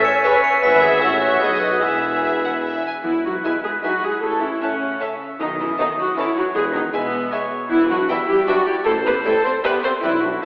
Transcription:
Already playing: bassoon C#4, viola section E5, oboe E5, flute G#5
0.04 clarinet C#5, french horn section C#5, glockenspiel C#7
0.24 violin section G#4 C#5 E5, clarinet B4, french horn section B4, viola section C#5, glockenspiel B6
0.43 clarinet C#5, glockenspiel C#7
0.47 french horn section C#5
0.62 double bass section G#1, tuba G#1, cello section G#2, bassoon B3, violin section G#4 B4 E5, clarinet B4, french horn section B4, viola section E5, oboe E5, glockenspiel B6
0.82 clarinet G#4, french horn section G#4, glockenspiel G#6
1.00 tuba A1, double bass section A1, cello section A2, bassoon C#4, clarinet E4, french horn section E4, violin section F#4 C#5 F#5, oboe C#5, flute F#5, glockenspiel E6
1.21 clarinet F#4, french horn section F#4, violin section E5, glockenspiel F#6
1.40 double bass section B1, tuba B1, cello section B2, bassoon B3, violin section F#4 B4 D#5, french horn section G#4, clarinet G#4, viola section D#5, oboe D#5, glockenspiel G#6
1.60 french horn section F#4, clarinet F#4, glockenspiel F#6
1.80 double bass section E1, tuba E1, cello section E2, clarinet E4, french horn section E4, violin section G#4 B4 E5, viola section E5, oboe E5, flute G#5, glockenspiel E6
2.24 violin section E5
2.44 violin section F#5
2.65 violin section E5
2.86 violin section G#5
3.04 tuba E1, double bass section E2, cello section E3, clarinet B3, french horn section E4, viola section E4, oboe B4
3.24 cello section F#3, clarinet D#4, french horn section F#4, viola section F#4
3.43 cello section E3, bassoon G#3, clarinet B3, viola section E4, french horn section E4, violin section B4 E5 G#5, flute E5
3.62 cello section G#3, clarinet E4, viola section G#4, french horn section G#4
3.82 cello section F#3, bassoon G#3, clarinet D#4, viola section F#4, french horn section F#4, violin section B4 E5 G#5, flute E5
4.01 cello section G#3, clarinet E4, french horn section G#4, viola section G#4
4.21 double bass section A1, tuba A1, cello section A3, clarinet E4, viola section A4, french horn section A4, oboe C#5
4.41 cello section E3, clarinet C#4, viola section E4, french horn section E4
4.61 cello section C#3, bassoon A3, clarinet A3, viola section C#4, french horn section C#4, violin section C#5 E5 A5, flute E5, oboe F#5
5.00 bassoon A3, violin section C#5 E5 A5, flute E5, oboe E5
5.39 double bass section B1, tuba B1, cello section D#3, clarinet B3, french horn section D#4, viola section D#4, oboe D#5
5.57 cello section E3, clarinet C#4, french horn section E4, viola section E4
5.78 cello section D#3, bassoon A3, clarinet B3, french horn section D#4, viola section D#4, violin section B4 C#5 A5, flute C#5
5.97 cello section F#3, clarinet D#4, french horn section F#4, viola section F#4
6.14 cello section E3, bassoon A3, clarinet C#4, french horn section E4, viola section E4, violin section B4 C#5 A5, flute C#5
6.18 oboe C#5
6.34 cello section F#3, clarinet D#4, french horn section F#4, viola section F#4
6.53 tuba E1, double bass section E2, cello section G#3, clarinet E4, french horn section G#4, viola section G#4, oboe B4
6.73 cello section D#3, clarinet B3, french horn section D#4, viola section D#4
6.92 cello section B2, clarinet G#3, bassoon G#3, french horn section B3, viola section B3, violin section B4 E5 G#5, flute B4, oboe E5
7.32 bassoon G#3, flute B4, violin section B4 E5 G#5, oboe C#5
7.69 tuba E1, double bass section E2, cello section E3, clarinet B3, viola section E4, french horn section E4, oboe B4
7.87 cello section F#3, clarinet D4, french horn section F#4, viola section F#4
8.07 cello section E3, bassoon G3, clarinet B3, french horn section E4, viola section E4, flute B4, violin section B4 E5 G5, oboe E5
8.27 cello section G3, clarinet E4, viola section G4, french horn section G4
8.46 cello section F#3, bassoon G3, clarinet D4, viola section F#4, french horn section F#4, violin section B4 E5 G5, flute B4, oboe D5
8.65 cello section G3, clarinet E4, viola section G4, french horn section G4
8.85 tuba A1, double bass section A1, cello section A3, clarinet E4, french horn section A4, viola section A4, oboe C5
9.04 cello section B3, clarinet G4, french horn section B4, viola section B4
9.24 bassoon G3, cello section A3, clarinet E4, french horn section A4, viola section A4, flute C5, violin section C5 E5 G5
9.43 cello section C4, clarinet A4, french horn section C5, viola section C5
9.63 bassoon G3, cello section B3, clarinet G4, french horn section B4, viola section B4, violin section C5 E5 G5, flute C5
9.81 cello section C4, clarinet A4, french horn section C5, viola section C5
10.01 tuba B1, double bass section B1, cello section E3, bassoon G3, clarinet C4, viola section E4, french horn section E4, oboe B4, violin section D5 G5, flute D5
10.22 cello section F#3, clarinet D4, viola section F#4, french horn section F#4
10.42 bassoon A3

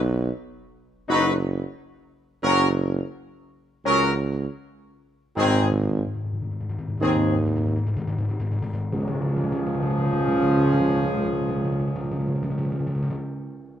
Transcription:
Already playing: tuba B1
1.08 tuba F#1, trombone section F#3, french horn section D#4, trumpet section B4
2.43 tuba F#1, trombone section F#3, french horn section C#4, trumpet section A#4
3.85 tuba C#2, trombone section F#3, french horn section C#4, trumpet section A#4
5.36 tuba G#1, timpani G#2, trombone section D#3, french horn section C4, trumpet section G#4
5.45 timpani G#2
5.54 timpani G#2
5.63 timpani G#2
5.72 timpani G#2
5.81 timpani G#2
5.98 timpani G#2
6.07 timpani G#2
6.15 timpani G#2
6.24 timpani G#2
6.33 timpani G#2
6.42 timpani G#2
6.51 timpani G#2
6.60 timpani G#2
6.69 timpani G#2
6.78 timpani G#2
6.88 timpani G#2
6.97 tuba D#2, timpani G#2, trombone section D#3, trumpet section G#4
7.01 french horn section C4
7.07 timpani G#2
7.17 timpani G#2
7.26 timpani G#2
7.36 timpani G#2
7.46 timpani G#2
7.56 timpani G#2
7.66 timpani G#2
7.76 timpani G#2
7.87 timpani G#2
7.97 timpani G#2
8.07 timpani G#2
8.18 timpani G#2
8.29 timpani G#2
8.40 timpani G#2
8.51 timpani G#2
8.62 timpani G#2
8.73 timpani G#2
8.92 tuba C#2, timpani C#3, trombone section F3, french horn section C#4, trumpet section G#4, tam-tam
9.00 timpani C#3
9.08 timpani C#3
9.15 timpani C#3
9.22 timpani C#3
9.29 timpani C#3
9.37 timpani C#3
9.44 timpani C#3
9.52 timpani C#3
9.59 timpani C#3
9.67 timpani C#3
9.74 timpani C#3
9.82 timpani C#3
9.90 timpani C#3
9.98 timpani C#3
10.05 timpani C#3
10.13 timpani C#3
10.20 timpani C#3
10.28 timpani C#3
10.35 timpani C#3
10.42 timpani C#3
10.50 timpani C#3
10.57 timpani C#3
10.65 timpani C#3
10.73 timpani C#3
10.81 timpani C#3
10.88 timpani C#3
10.96 timpani C#3
11.03 timpani C#3
11.11 timpani C#3
11.18 timpani C#3
11.25 timpani C#3
11.33 timpani C#3
11.40 timpani C#3
11.49 timpani C#3
11.56 timpani C#3
11.64 timpani C#3
11.72 timpani C#3
11.80 timpani C#3
11.88 timpani C#3
11.96 timpani C#3
12.04 timpani C#3
12.12 timpani C#3
12.20 timpani C#3
12.27 timpani C#3
12.35 timpani C#3
12.43 timpani C#3
12.50 timpani C#3
12.58 timpani C#3
12.65 timpani C#3
12.72 timpani C#3
12.79 timpani C#3
12.87 timpani C#3
12.95 timpani C#3
13.03 timpani C#3
13.10 timpani C#3

